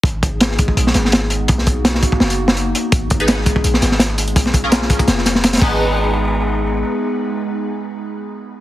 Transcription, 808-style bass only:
X:1
M:4/4
L:1/8
Q:"Swing 16ths" 1/4=167
K:G#dor
V:1 name="808-style bass" clef=bass
G,,,4 A,,, G,,,3 | B,,,3 z F,,,3 z | G,,,4 A,,, G,,,3 | A,,,3 z E,,,3 G,,,- |
G,,,6 z2 | z8 |]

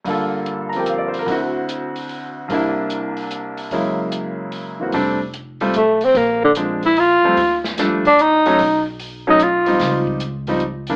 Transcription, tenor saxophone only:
X:1
M:3/4
L:1/8
Q:"Swing" 1/4=148
K:Gdor
V:1 name="Tenor saxophone"
z6 | z6 | z6 | z6 |
z4 A, C | B, D, z E F2- | F z2 D _E2- | _E z2 ^D F2- |
F z4 z |]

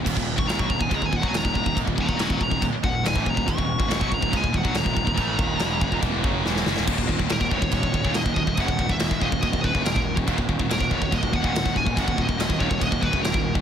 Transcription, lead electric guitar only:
X:1
M:4/4
L:1/16
Q:1/4=141
K:Ebphr
V:1 name="Lead electric guitar"
z3 d' b d' b a b a g a b4 | z2 [bd']2 [bd']2 b2 z2 g2 a2 b2 | d'6 b2 a2 g2 b4- | b8 z8 |
z4 B2 d6 e2 e2 | g3 f3 e2 e2 c2 B3 z | z4 B2 d2 e2 g4 a2 | g2 e4 d2 e2 c2 B3 z |]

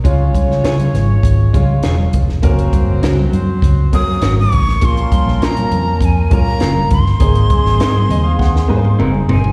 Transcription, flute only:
X:1
M:4/4
L:1/16
Q:1/4=100
K:Db
V:1 name="Flute"
z16 | z8 z2 e'3 d'3 | c'4 b4 a2 b4 c'2- | c'12 z2 a2 |]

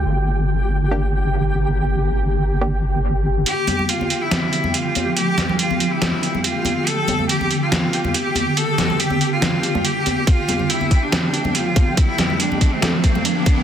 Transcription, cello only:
X:1
M:4/4
L:1/16
Q:"Swing 16ths" 1/4=141
K:Dm
V:1 name="Cello"
z16 | z16 | G4 F3 E4- E F4 | G4 F3 E4- E F4 |
A4 G3 F4- F G4 | A4 G3 F4- F G4 | F4 E3 D4- D F4 | E4 D3 C4- C D4 |]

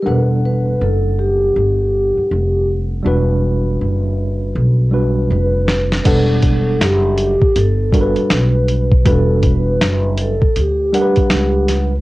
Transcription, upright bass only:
X:1
M:4/4
L:1/16
Q:"Swing 16ths" 1/4=80
K:Em
V:1 name="Upright bass" clef=bass
E,,,4 F,,,4 G,,,3 z =F,,,4 | E,,,4 F,,,4 B,,,4 =F,,,4 | E,,,4 F,,,3 z G,,,3 z B,,,4 | E,,,4 F,,,3 z D,,3 z ^C,,4 |]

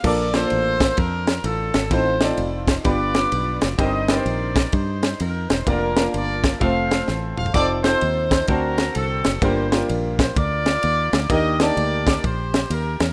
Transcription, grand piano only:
X:1
M:4/4
L:1/8
Q:"Swing" 1/4=128
K:Bb
V:1 name="Grand piano"
[B,DFAB] [B,DFAc]3 z4 | [CEFAc] [CEFAd]3 [=B,DFG=B]3 z | [CEGBc] [CEGB_c=c]3 z4 | [B,DFBd] [B,DFBf]3 [A,CFAc]3 z |
[CEFAc] [CEFAc]3 [CD^Fca]3 z | [B,DFGB] [B,DFGB]3 z4 | [B,DEGB] [B,DEGa]3 z4 |]
V:2 name="Grand piano" clef=bass
B,,3 z4 z | A,,3 z G,,3 z | G,,3 z4 z | z8 |
z4 D,3 z | G,,3 z4 z | E,3 z4 z |]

